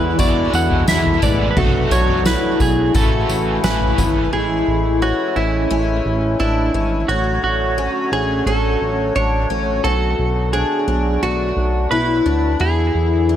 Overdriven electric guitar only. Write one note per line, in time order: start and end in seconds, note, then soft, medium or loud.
0.00 0.18 E2 medium
0.00 0.19 B2 medium
0.00 0.17 E3 medium
0.00 0.18 G#3 medium
0.00 0.20 D4 medium
0.00 0.20 E4 medium
0.18 0.85 E3 medium
0.18 0.87 G#3 medium
0.18 0.89 D4 medium
0.18 0.89 E4 medium
0.87 1.56 E3 medium
0.87 1.57 G#3 medium
0.87 1.57 D4 medium
0.87 1.58 E4 medium
1.55 2.94 B2 medium
1.55 2.93 F#3 medium
1.55 2.94 A3 medium
1.59 2.95 D4 medium
1.59 2.96 F#4 medium
2.93 3.62 E3 medium
2.93 3.63 A3 medium
2.93 3.65 C#4 medium
3.63 4.84 E3 medium
3.63 4.84 A3 medium
3.63 4.84 C#4 medium
3.63 4.84 G#4 medium